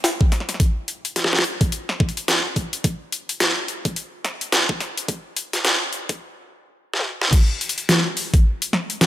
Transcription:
0.04 snare, closed hi-hat
0.21 kick
0.32 snare, closed hi-hat
0.40 snare
0.49 snare, closed hi-hat
0.54 snare
0.60 kick, closed hi-hat
0.88 closed hi-hat
1.05 closed hi-hat
1.16 snare, closed hi-hat
1.24 snare
1.33 snare
1.39 snare
1.44 closed hi-hat
1.61 kick, closed hi-hat
1.72 closed hi-hat
1.89 snare
2.00 kick
2.09 closed hi-hat
2.17 closed hi-hat
2.28 snare, closed hi-hat
2.56 kick, closed hi-hat
2.73 closed hi-hat
2.84 kick, closed hi-hat
3.12 closed hi-hat
3.29 closed hi-hat
3.40 snare, closed hi-hat
3.68 closed hi-hat
3.85 kick, closed hi-hat
3.96 closed hi-hat
4.25 snare, closed hi-hat
4.41 closed hi-hat
4.52 snare, closed hi-hat
4.69 kick
4.80 snare, closed hi-hat
4.97 closed hi-hat
5.08 kick, closed hi-hat
5.37 closed hi-hat
5.53 snare, closed hi-hat
5.65 snare, closed hi-hat
5.93 closed hi-hat
6.09 kick, closed hi-hat
6.94 snare
6.99 mid tom
7.22 snare
7.33 kick, closed hi-hat, crash
7.61 closed hi-hat
7.69 closed hi-hat
7.78 closed hi-hat
7.89 snare, closed hi-hat
8.17 open hi-hat
8.34 kick, closed hi-hat
8.62 closed hi-hat
8.73 snare
8.90 closed hi-hat
9.01 snare, closed hi-hat

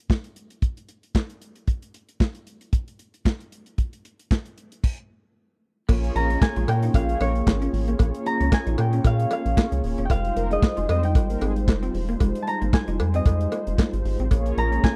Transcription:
0.10 kick, snare, clap
0.24 closed hi-hat
0.36 closed hi-hat
0.50 closed hi-hat
0.62 kick, closed hi-hat
0.77 closed hi-hat
0.89 closed hi-hat
1.03 closed hi-hat
1.15 kick, snare, clap
1.30 closed hi-hat
1.42 closed hi-hat
1.55 closed hi-hat
1.67 kick, closed hi-hat
1.82 closed hi-hat
1.94 closed hi-hat
2.09 closed hi-hat
2.20 kick, snare, clap
2.35 closed hi-hat
2.47 closed hi-hat
2.61 closed hi-hat
2.73 kick, closed hi-hat
2.88 closed hi-hat
2.99 closed hi-hat
3.14 closed hi-hat
3.25 kick, snare, clap
3.40 closed hi-hat
3.52 closed hi-hat
3.66 closed hi-hat
3.78 kick, closed hi-hat
3.93 closed hi-hat
4.05 closed hi-hat
4.19 closed hi-hat
4.31 kick, snare, clap
4.45 closed hi-hat
4.58 closed hi-hat
4.72 closed hi-hat
4.84 kick, crash
5.88 A#1 A#3 C#4 F4 G#4 C#5, kick, crash, cowbell
6.04 closed hi-hat
6.15 A#1 A#3 A#4 A#5, muted clean electric guitar stroke, closed hi-hat
6.30 G#3 C#4 G#4, closed hi-hat
6.42 G#5, kick, snare, clap, cowbell
6.56 A#1 G#3 F4 G#4, closed hi-hat
6.68 A#2 A#3 A#4 G5, muted clean electric guitar stroke, closed hi-hat, cowbell
6.82 D#4, closed hi-hat
6.94 A#1 F5, kick, closed hi-hat, cowbell
7.09 G#3 G#4, closed hi-hat
7.20 A#1 A#3 C#4 A#4 C#5, closed hi-hat, cowbell
7.35 closed hi-hat
7.47 G#1, kick, snare, clap, cowbell
7.62 C#4, closed hi-hat
7.73 A1, muted clean electric guitar stroke, open hi-hat
7.88 A#3, closed hi-hat
7.99 A#1 A#3, kick, closed hi-hat, cowbell
8.14 closed hi-hat
8.26 A#5, muted clean electric guitar stroke, closed hi-hat
8.40 C#2 C#4, closed hi-hat
8.52 G#5, kick, snare, clap, cowbell
8.67 A#1 D#4, closed hi-hat
8.78 A#2 G5, muted clean electric guitar stroke, closed hi-hat, cowbell
8.93 C#4, closed hi-hat
9.04 A#2 F5, kick, closed hi-hat, cowbell
9.20 closed hi-hat
9.31 A#3 F5, closed hi-hat, cowbell
9.46 A#1, closed hi-hat
9.57 A#3, kick, snare, clap, cowbell
9.72 C#2, muted clean electric guitar stroke, closed hi-hat
9.84 D#1, open hi-hat
9.98 E1 C#4, closed hi-hat
10.05 G#3 G5
10.10 F1 G3 D#4 F4 C5 F5, kick, closed hi-hat, cowbell
10.25 closed hi-hat
10.36 F1 A#3 A#4, muted clean electric guitar stroke, closed hi-hat
10.50 G#3 D#4 G#4 D#5, closed hi-hat
10.62 kick, snare, clap, cowbell
10.77 F1 G#3 F4 G#4, closed hi-hat
10.89 F2 C4 C5 D#5, muted clean electric guitar stroke, closed hi-hat, cowbell
11.03 D#4 G5, closed hi-hat
11.15 G#1, kick, closed hi-hat, cowbell
11.30 A#3 A#4, closed hi-hat
11.41 G#1 G#3 C4 G#4, closed hi-hat, cowbell
11.56 closed hi-hat
11.68 F1, kick, snare, clap, cowbell
11.83 C4, closed hi-hat
11.94 E1, muted clean electric guitar stroke, open hi-hat
12.08 A#3, closed hi-hat
12.20 F1 G#3, kick, closed hi-hat, cowbell
12.35 closed hi-hat
12.42 A5
12.47 A#5, muted clean electric guitar stroke, closed hi-hat
12.62 G#1 A#3, closed hi-hat
12.73 G#5, kick, snare, clap, cowbell
12.88 F1 D#4, closed hi-hat
13.00 F2, muted clean electric guitar stroke, closed hi-hat, cowbell
13.14 C4 D#5, closed hi-hat
13.25 F2, kick, closed hi-hat, cowbell
13.41 closed hi-hat
13.52 A#3, closed hi-hat, cowbell
13.67 F1, closed hi-hat
13.78 A#3, kick, snare, clap, cowbell
13.93 G#1, muted clean electric guitar stroke, closed hi-hat
14.05 G#1, open hi-hat
14.19 A1 C4, closed hi-hat
14.30 A#1 A#3 C#4 F4 G#4 C#5, kick, closed hi-hat, cowbell
14.46 closed hi-hat
14.57 A#1 A#3 A#4 A#5, muted clean electric guitar stroke, closed hi-hat
14.72 G#3 C#4 G#4, closed hi-hat
14.84 G#5, kick, snare, clap, cowbell

